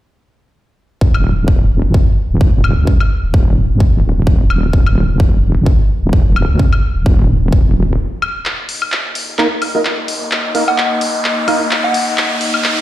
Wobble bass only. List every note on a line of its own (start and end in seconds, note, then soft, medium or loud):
1.01 1.12 D#1 medium
1.14 1.46 D#1 loud
1.48 1.82 D#1 medium
1.84 2.05 F#1 medium
2.31 2.52 D#1 medium
2.54 2.75 D#1 loud
2.77 2.98 C#2 medium
3.24 3.68 D#1 medium
3.70 3.91 F#1 loud
3.93 4.02 D#1 medium
4.04 4.25 D#1 medium
4.27 4.48 D#1 medium
4.50 4.72 D#1 medium
4.73 4.84 D#1 medium
4.86 5.18 D#1 loud
5.20 5.54 D#1 medium
5.56 5.77 F#1 loud
6.03 6.24 D#1 loud
6.26 6.47 D#1 medium
6.49 6.70 C#2 medium
6.96 7.40 D#1 medium
7.42 7.74 D#1 medium
7.76 7.99 D#1 loud